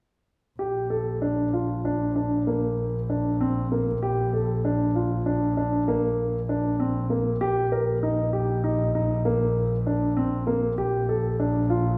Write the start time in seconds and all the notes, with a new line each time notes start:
0.59 A#1 G4
0.90 A4
1.22 D4
1.53 F4
1.85 D4
2.16 D4
2.47 A#3
3.10 D4
3.41 C4
3.72 A#3
4.03 G4
4.34 A4
4.65 D4
4.95 F4
5.26 D4
5.57 D4
5.88 A#3
6.49 D4
6.80 C4
7.10 A#3
7.41 A#1 G4
7.72 A#4
8.03 D#4
8.33 G4
8.64 D#4
8.95 D#4
9.25 A#3
9.87 D4
10.17 C4
10.47 A#3
10.78 A#1 G4
11.09 A4
11.40 D4
11.70 F4